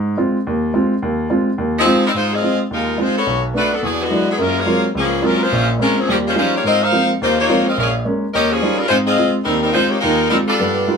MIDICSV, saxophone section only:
0, 0, Header, 1, 2, 480
1, 0, Start_track
1, 0, Key_signature, -4, "major"
1, 0, Tempo, 281426
1, 1741, Time_signature, 4, 2, 24, 8
1, 18712, End_track
2, 0, Start_track
2, 0, Title_t, "Saxophone section"
2, 0, Program_c, 0, 65
2, 3041, Note_on_c, 0, 53, 84
2, 3044, Note_on_c, 0, 68, 89
2, 3050, Note_on_c, 0, 60, 83
2, 3054, Note_on_c, 0, 63, 79
2, 3465, Note_off_c, 0, 53, 0
2, 3466, Note_off_c, 0, 68, 0
2, 3470, Note_off_c, 0, 60, 0
2, 3472, Note_off_c, 0, 63, 0
2, 3525, Note_on_c, 0, 60, 71
2, 3526, Note_on_c, 0, 55, 76
2, 3528, Note_on_c, 0, 63, 68
2, 3530, Note_on_c, 0, 70, 85
2, 3596, Note_off_c, 0, 60, 0
2, 3597, Note_off_c, 0, 55, 0
2, 3598, Note_off_c, 0, 63, 0
2, 3599, Note_off_c, 0, 70, 0
2, 3685, Note_on_c, 0, 65, 77
2, 3686, Note_on_c, 0, 56, 78
2, 3691, Note_on_c, 0, 63, 77
2, 3697, Note_on_c, 0, 72, 90
2, 3947, Note_off_c, 0, 56, 0
2, 3947, Note_off_c, 0, 65, 0
2, 3950, Note_off_c, 0, 63, 0
2, 3953, Note_off_c, 0, 72, 0
2, 3978, Note_on_c, 0, 75, 90
2, 3981, Note_on_c, 0, 60, 71
2, 3987, Note_on_c, 0, 65, 70
2, 3987, Note_on_c, 0, 68, 78
2, 4444, Note_off_c, 0, 75, 0
2, 4446, Note_off_c, 0, 60, 0
2, 4449, Note_off_c, 0, 65, 0
2, 4449, Note_off_c, 0, 68, 0
2, 4656, Note_on_c, 0, 70, 85
2, 4666, Note_on_c, 0, 63, 66
2, 4669, Note_on_c, 0, 65, 71
2, 4671, Note_on_c, 0, 56, 67
2, 5083, Note_off_c, 0, 70, 0
2, 5088, Note_off_c, 0, 63, 0
2, 5090, Note_off_c, 0, 65, 0
2, 5091, Note_off_c, 0, 56, 0
2, 5121, Note_on_c, 0, 72, 83
2, 5124, Note_on_c, 0, 63, 71
2, 5130, Note_on_c, 0, 65, 72
2, 5131, Note_on_c, 0, 56, 72
2, 5404, Note_off_c, 0, 72, 0
2, 5405, Note_off_c, 0, 63, 0
2, 5408, Note_off_c, 0, 65, 0
2, 5409, Note_off_c, 0, 56, 0
2, 5409, Note_on_c, 0, 66, 78
2, 5412, Note_on_c, 0, 59, 76
2, 5413, Note_on_c, 0, 73, 86
2, 5416, Note_on_c, 0, 69, 71
2, 5847, Note_off_c, 0, 66, 0
2, 5848, Note_off_c, 0, 59, 0
2, 5849, Note_off_c, 0, 73, 0
2, 5851, Note_off_c, 0, 69, 0
2, 6091, Note_on_c, 0, 57, 77
2, 6091, Note_on_c, 0, 71, 92
2, 6095, Note_on_c, 0, 66, 76
2, 6101, Note_on_c, 0, 62, 73
2, 6349, Note_off_c, 0, 57, 0
2, 6349, Note_off_c, 0, 71, 0
2, 6351, Note_off_c, 0, 62, 0
2, 6351, Note_off_c, 0, 66, 0
2, 6368, Note_on_c, 0, 69, 82
2, 6371, Note_on_c, 0, 59, 71
2, 6372, Note_on_c, 0, 62, 68
2, 6374, Note_on_c, 0, 54, 70
2, 6497, Note_off_c, 0, 69, 0
2, 6499, Note_off_c, 0, 59, 0
2, 6499, Note_off_c, 0, 62, 0
2, 6500, Note_off_c, 0, 54, 0
2, 6525, Note_on_c, 0, 66, 65
2, 6560, Note_off_c, 0, 66, 0
2, 6569, Note_on_c, 0, 62, 75
2, 6573, Note_on_c, 0, 68, 86
2, 6576, Note_on_c, 0, 59, 71
2, 6582, Note_on_c, 0, 54, 71
2, 6847, Note_off_c, 0, 62, 0
2, 6850, Note_off_c, 0, 68, 0
2, 6851, Note_off_c, 0, 59, 0
2, 6854, Note_off_c, 0, 54, 0
2, 6871, Note_on_c, 0, 66, 88
2, 6876, Note_on_c, 0, 59, 81
2, 6881, Note_on_c, 0, 56, 75
2, 6883, Note_on_c, 0, 50, 76
2, 7330, Note_off_c, 0, 66, 0
2, 7333, Note_off_c, 0, 59, 0
2, 7335, Note_off_c, 0, 56, 0
2, 7336, Note_off_c, 0, 50, 0
2, 7347, Note_on_c, 0, 54, 74
2, 7348, Note_on_c, 0, 62, 67
2, 7354, Note_on_c, 0, 68, 80
2, 7359, Note_on_c, 0, 59, 67
2, 7501, Note_off_c, 0, 54, 0
2, 7501, Note_off_c, 0, 62, 0
2, 7504, Note_off_c, 0, 68, 0
2, 7507, Note_off_c, 0, 59, 0
2, 7518, Note_on_c, 0, 61, 80
2, 7519, Note_on_c, 0, 65, 78
2, 7523, Note_on_c, 0, 56, 83
2, 7528, Note_on_c, 0, 70, 94
2, 7802, Note_off_c, 0, 61, 0
2, 7802, Note_off_c, 0, 65, 0
2, 7804, Note_off_c, 0, 56, 0
2, 7807, Note_off_c, 0, 70, 0
2, 7819, Note_on_c, 0, 68, 82
2, 7824, Note_on_c, 0, 73, 95
2, 7827, Note_on_c, 0, 58, 87
2, 7829, Note_on_c, 0, 65, 87
2, 8284, Note_off_c, 0, 68, 0
2, 8286, Note_off_c, 0, 73, 0
2, 8288, Note_off_c, 0, 58, 0
2, 8289, Note_off_c, 0, 65, 0
2, 8481, Note_on_c, 0, 68, 84
2, 8489, Note_on_c, 0, 61, 71
2, 8491, Note_on_c, 0, 53, 75
2, 8494, Note_on_c, 0, 58, 74
2, 8914, Note_off_c, 0, 68, 0
2, 8918, Note_off_c, 0, 61, 0
2, 8919, Note_off_c, 0, 53, 0
2, 8921, Note_off_c, 0, 58, 0
2, 8948, Note_on_c, 0, 70, 90
2, 8957, Note_on_c, 0, 61, 78
2, 8958, Note_on_c, 0, 56, 76
2, 8961, Note_on_c, 0, 65, 75
2, 9228, Note_off_c, 0, 56, 0
2, 9230, Note_off_c, 0, 61, 0
2, 9234, Note_off_c, 0, 65, 0
2, 9236, Note_off_c, 0, 70, 0
2, 9246, Note_on_c, 0, 72, 92
2, 9249, Note_on_c, 0, 56, 84
2, 9251, Note_on_c, 0, 61, 79
2, 9255, Note_on_c, 0, 65, 85
2, 9717, Note_off_c, 0, 72, 0
2, 9718, Note_off_c, 0, 56, 0
2, 9719, Note_off_c, 0, 61, 0
2, 9721, Note_off_c, 0, 65, 0
2, 9930, Note_on_c, 0, 65, 81
2, 9931, Note_on_c, 0, 61, 80
2, 9934, Note_on_c, 0, 56, 83
2, 9935, Note_on_c, 0, 70, 92
2, 10188, Note_off_c, 0, 61, 0
2, 10188, Note_off_c, 0, 65, 0
2, 10189, Note_off_c, 0, 56, 0
2, 10190, Note_off_c, 0, 70, 0
2, 10213, Note_on_c, 0, 68, 79
2, 10218, Note_on_c, 0, 53, 73
2, 10227, Note_on_c, 0, 61, 72
2, 10230, Note_on_c, 0, 60, 72
2, 10380, Note_off_c, 0, 53, 0
2, 10380, Note_off_c, 0, 61, 0
2, 10384, Note_off_c, 0, 68, 0
2, 10392, Note_off_c, 0, 60, 0
2, 10400, Note_on_c, 0, 61, 72
2, 10401, Note_on_c, 0, 53, 73
2, 10403, Note_on_c, 0, 58, 71
2, 10410, Note_on_c, 0, 67, 83
2, 10527, Note_off_c, 0, 53, 0
2, 10527, Note_off_c, 0, 61, 0
2, 10529, Note_off_c, 0, 58, 0
2, 10535, Note_off_c, 0, 67, 0
2, 10705, Note_on_c, 0, 56, 77
2, 10705, Note_on_c, 0, 65, 76
2, 10710, Note_on_c, 0, 72, 93
2, 10711, Note_on_c, 0, 61, 75
2, 10858, Note_off_c, 0, 56, 0
2, 10858, Note_off_c, 0, 65, 0
2, 10861, Note_off_c, 0, 72, 0
2, 10862, Note_off_c, 0, 61, 0
2, 10885, Note_on_c, 0, 65, 74
2, 10888, Note_on_c, 0, 61, 83
2, 10889, Note_on_c, 0, 72, 91
2, 10896, Note_on_c, 0, 56, 76
2, 11145, Note_off_c, 0, 65, 0
2, 11146, Note_off_c, 0, 61, 0
2, 11146, Note_off_c, 0, 72, 0
2, 11150, Note_off_c, 0, 56, 0
2, 11192, Note_on_c, 0, 67, 70
2, 11192, Note_on_c, 0, 73, 80
2, 11193, Note_on_c, 0, 58, 70
2, 11195, Note_on_c, 0, 65, 71
2, 11342, Note_off_c, 0, 58, 0
2, 11342, Note_off_c, 0, 67, 0
2, 11342, Note_off_c, 0, 73, 0
2, 11343, Note_off_c, 0, 65, 0
2, 11358, Note_on_c, 0, 75, 109
2, 11363, Note_on_c, 0, 70, 94
2, 11366, Note_on_c, 0, 65, 83
2, 11371, Note_on_c, 0, 60, 91
2, 11621, Note_off_c, 0, 75, 0
2, 11623, Note_off_c, 0, 70, 0
2, 11625, Note_off_c, 0, 65, 0
2, 11627, Note_off_c, 0, 60, 0
2, 11647, Note_on_c, 0, 63, 88
2, 11649, Note_on_c, 0, 77, 105
2, 11651, Note_on_c, 0, 70, 84
2, 11652, Note_on_c, 0, 72, 91
2, 12117, Note_off_c, 0, 63, 0
2, 12118, Note_off_c, 0, 77, 0
2, 12119, Note_off_c, 0, 70, 0
2, 12119, Note_off_c, 0, 72, 0
2, 12324, Note_on_c, 0, 72, 88
2, 12325, Note_on_c, 0, 63, 85
2, 12334, Note_on_c, 0, 58, 81
2, 12335, Note_on_c, 0, 65, 81
2, 12584, Note_off_c, 0, 63, 0
2, 12584, Note_off_c, 0, 72, 0
2, 12589, Note_off_c, 0, 58, 0
2, 12590, Note_off_c, 0, 65, 0
2, 12616, Note_on_c, 0, 73, 99
2, 12617, Note_on_c, 0, 58, 88
2, 12617, Note_on_c, 0, 63, 82
2, 12626, Note_on_c, 0, 65, 83
2, 13049, Note_off_c, 0, 58, 0
2, 13049, Note_off_c, 0, 63, 0
2, 13049, Note_off_c, 0, 73, 0
2, 13054, Note_off_c, 0, 65, 0
2, 13100, Note_on_c, 0, 60, 78
2, 13104, Note_on_c, 0, 70, 77
2, 13112, Note_on_c, 0, 65, 73
2, 13113, Note_on_c, 0, 75, 82
2, 13267, Note_off_c, 0, 60, 0
2, 13269, Note_off_c, 0, 70, 0
2, 13273, Note_off_c, 0, 65, 0
2, 13273, Note_off_c, 0, 75, 0
2, 13301, Note_on_c, 0, 70, 79
2, 13302, Note_on_c, 0, 77, 96
2, 13307, Note_on_c, 0, 61, 83
2, 13314, Note_on_c, 0, 68, 76
2, 13553, Note_off_c, 0, 70, 0
2, 13554, Note_off_c, 0, 77, 0
2, 13556, Note_off_c, 0, 61, 0
2, 13560, Note_off_c, 0, 68, 0
2, 14225, Note_on_c, 0, 75, 97
2, 14226, Note_on_c, 0, 70, 92
2, 14229, Note_on_c, 0, 67, 91
2, 14232, Note_on_c, 0, 61, 90
2, 14495, Note_off_c, 0, 70, 0
2, 14495, Note_off_c, 0, 75, 0
2, 14497, Note_off_c, 0, 67, 0
2, 14498, Note_off_c, 0, 61, 0
2, 14533, Note_on_c, 0, 58, 80
2, 14542, Note_on_c, 0, 68, 98
2, 14546, Note_on_c, 0, 61, 77
2, 14548, Note_on_c, 0, 53, 81
2, 14974, Note_off_c, 0, 61, 0
2, 14993, Note_on_c, 0, 65, 72
2, 14994, Note_on_c, 0, 70, 81
2, 14995, Note_on_c, 0, 61, 76
2, 14996, Note_on_c, 0, 55, 73
2, 15002, Note_off_c, 0, 58, 0
2, 15006, Note_off_c, 0, 68, 0
2, 15009, Note_off_c, 0, 53, 0
2, 15136, Note_off_c, 0, 65, 0
2, 15146, Note_on_c, 0, 72, 99
2, 15152, Note_on_c, 0, 56, 86
2, 15156, Note_on_c, 0, 63, 81
2, 15156, Note_on_c, 0, 65, 82
2, 15176, Note_off_c, 0, 61, 0
2, 15176, Note_off_c, 0, 70, 0
2, 15177, Note_off_c, 0, 55, 0
2, 15285, Note_off_c, 0, 72, 0
2, 15291, Note_off_c, 0, 56, 0
2, 15293, Note_off_c, 0, 63, 0
2, 15294, Note_off_c, 0, 65, 0
2, 15465, Note_on_c, 0, 75, 99
2, 15467, Note_on_c, 0, 65, 88
2, 15470, Note_on_c, 0, 60, 89
2, 15470, Note_on_c, 0, 68, 87
2, 15915, Note_off_c, 0, 75, 0
2, 15916, Note_off_c, 0, 65, 0
2, 15918, Note_off_c, 0, 60, 0
2, 15918, Note_off_c, 0, 68, 0
2, 16105, Note_on_c, 0, 63, 73
2, 16108, Note_on_c, 0, 60, 70
2, 16113, Note_on_c, 0, 55, 74
2, 16115, Note_on_c, 0, 70, 91
2, 16393, Note_off_c, 0, 70, 0
2, 16396, Note_off_c, 0, 55, 0
2, 16396, Note_off_c, 0, 63, 0
2, 16397, Note_off_c, 0, 60, 0
2, 16414, Note_on_c, 0, 70, 82
2, 16416, Note_on_c, 0, 55, 72
2, 16423, Note_on_c, 0, 63, 76
2, 16427, Note_on_c, 0, 60, 75
2, 16564, Note_off_c, 0, 63, 0
2, 16580, Note_on_c, 0, 56, 76
2, 16585, Note_on_c, 0, 63, 78
2, 16593, Note_on_c, 0, 65, 81
2, 16594, Note_off_c, 0, 70, 0
2, 16595, Note_off_c, 0, 55, 0
2, 16597, Note_on_c, 0, 72, 95
2, 16601, Note_off_c, 0, 60, 0
2, 16843, Note_off_c, 0, 63, 0
2, 16863, Note_on_c, 0, 63, 70
2, 16872, Note_on_c, 0, 73, 86
2, 16874, Note_off_c, 0, 56, 0
2, 16875, Note_on_c, 0, 67, 72
2, 16881, Note_off_c, 0, 65, 0
2, 16883, Note_off_c, 0, 72, 0
2, 16884, Note_on_c, 0, 58, 73
2, 17047, Note_off_c, 0, 63, 0
2, 17065, Note_on_c, 0, 70, 94
2, 17067, Note_on_c, 0, 56, 79
2, 17067, Note_on_c, 0, 63, 81
2, 17075, Note_on_c, 0, 65, 75
2, 17078, Note_off_c, 0, 73, 0
2, 17080, Note_off_c, 0, 67, 0
2, 17084, Note_off_c, 0, 58, 0
2, 17529, Note_off_c, 0, 70, 0
2, 17530, Note_off_c, 0, 56, 0
2, 17530, Note_off_c, 0, 63, 0
2, 17535, Note_off_c, 0, 65, 0
2, 17563, Note_on_c, 0, 60, 74
2, 17564, Note_on_c, 0, 55, 69
2, 17565, Note_on_c, 0, 70, 83
2, 17567, Note_on_c, 0, 63, 75
2, 17701, Note_off_c, 0, 60, 0
2, 17702, Note_off_c, 0, 55, 0
2, 17703, Note_off_c, 0, 70, 0
2, 17704, Note_off_c, 0, 63, 0
2, 17875, Note_on_c, 0, 62, 68
2, 17877, Note_on_c, 0, 65, 72
2, 17878, Note_on_c, 0, 55, 74
2, 17878, Note_on_c, 0, 69, 85
2, 18712, Note_off_c, 0, 55, 0
2, 18712, Note_off_c, 0, 62, 0
2, 18712, Note_off_c, 0, 65, 0
2, 18712, Note_off_c, 0, 69, 0
2, 18712, End_track
0, 0, End_of_file